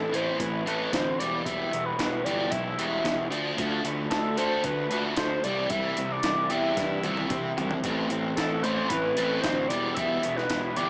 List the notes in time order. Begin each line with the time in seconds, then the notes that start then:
Already playing: A1 A2 E3 A3 C4 E4 A4
0.12 A2 E3 A3 B4 C5, closed hi-hat
0.40 A1 A2 E3 E4 B4, kick, closed hi-hat
0.66 A1 A2 E3 A3 B4, closed hi-hat
0.93 D2 A2 E3 C4 C5, kick, snare, closed hi-hat
1.19 E1 E2 B2 E3 G3 D5, closed hi-hat
1.45 E1 E2 B2 E3 G3 E5, kick, closed hi-hat
1.72 E1 E2 B2 B3, closed hi-hat
1.85 B4
1.99 E1 E2 B2 E4, kick, snare, closed hi-hat
2.24 G1 E2 B2 E3 G4 D5, closed hi-hat
2.51 B1 E2 B2 E4 E5, kick, closed hi-hat
2.78 E1 E2 B2 E3 G3, closed hi-hat
3.04 E2 B2 B3, kick, snare, closed hi-hat
3.30 D2 D3 F3 A3 D4, closed hi-hat
3.57 D2 D3 F3 A3 D4, kick, closed hi-hat
3.84 D2 D3 A3, closed hi-hat
4.10 D2 D3 A3 D4 A4, kick, snare, closed hi-hat
4.37 D3 A3 D4 A4 C5, closed hi-hat
4.63 D2 D3 A3 D4 B4, kick, closed hi-hat
4.90 D2 D3 F3 A3 D4 B4, closed hi-hat
5.17 D2 D3 A3 C5, kick, snare, closed hi-hat
5.44 C2 C3 E3 G3 D5, closed hi-hat
5.70 C2 C3 E3 G3 E5, kick, closed hi-hat
5.97 C2 C3 E3 C4, closed hi-hat
6.12 D5
6.23 C2 C3 E3 E4, kick, snare, closed hi-hat
6.50 E2 C3 E3 G3 G4 E5, closed hi-hat
6.77 G2 C3 E3 E4 E5, kick, snare, closed hi-hat
7.03 C2 C3 E3 G3, closed hi-hat, high tom
7.17 high tom
7.30 C3 E3 C4, kick, closed hi-hat, mid tom
7.57 C2 C3 E3 E4, closed hi-hat, floor tom
7.71 floor tom
7.84 A1 A2 E3 A3 C4, kick, closed hi-hat
8.10 A1 A2 E3 C4, closed hi-hat
8.36 A1 A2 E3 E4 A4, kick, snare, closed hi-hat
8.63 A2 E3 A3 B4 C5, closed hi-hat
8.89 A1 A2 E3 E4 B4, kick, closed hi-hat
9.15 A1 A2 E3 A3 C4 B4, closed hi-hat
9.41 D2 A2 E3 C5, kick, snare, closed hi-hat
9.45 C4
9.68 E1 E2 B2 E3 G3 D5, closed hi-hat
9.95 E1 E2 B2 E3 G3 E5, kick, closed hi-hat
10.23 E1 E2 B2 B3, closed hi-hat
10.36 B4, snare
10.50 E1 E2 B2 E4, kick, snare, closed hi-hat
10.76 G1 E2 B2 E3 G4 D5, closed hi-hat